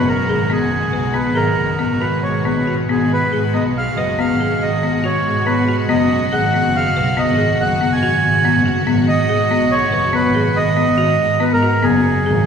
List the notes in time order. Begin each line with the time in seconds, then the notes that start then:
Already playing: B2 G#3 B3 F#4
0.08 A#4
0.29 G#1 G#4
0.50 B3 G#4
0.63 F#1
0.93 B1 B4
1.14 B3 B4
1.26 G#1
1.35 G#4 A#4
1.59 F#1
1.79 B3
1.91 G#1
2.00 F#4 B4
2.23 G#1 C#5
2.45 A#1 B3 B4
2.67 G#1 F#4
2.89 G#1 B3 F#4 G#4
3.13 B4
3.32 G#2 G#4
3.54 B3 D#5
3.65 B1
3.78 F5
3.97 F#1 B4 D#5
4.19 B3 F5
4.30 G#1
4.40 G#4
4.62 G#1 D#5
4.83 B3
4.94 G#1
5.04 F#4 C#5
5.25 G#2
5.46 B3 B4
5.58 G#2
5.68 F#4
5.89 F#1 B3 D#5
6.32 G#1 G#4 F#5
6.54 B3
6.65 F#1
6.76 F5
6.96 B1 B4
7.17 B3 D#5
7.28 G#1
7.38 G#4
7.60 F#1 F#5
7.81 B3
7.92 G#1 G#5
8.03 F#4
8.24 G#1
8.45 B3
8.56 F#1
8.66 F#4
8.87 G#1 B3
9.08 D#5
9.29 G#2 G#4
9.51 B3
9.61 B1
9.72 C#5
9.92 F#1 B4
10.13 B3 B4
10.24 G#1
10.35 G#4
10.56 G#1 D#5
10.77 B3
10.89 G#1
10.98 F#4
11.21 G#2
11.40 B3 B4
11.52 G#2 A#4
11.63 F#4
11.83 F#1 B3 G#4
12.26 G#1 G#4